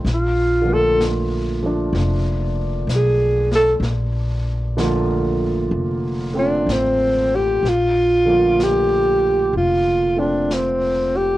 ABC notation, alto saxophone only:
X:1
M:4/4
L:1/8
Q:"Swing" 1/4=63
K:Bb
V:1 name="Alto saxophone"
F A z4 _A =A | z4 z D C G | F2 G2 F D C G |]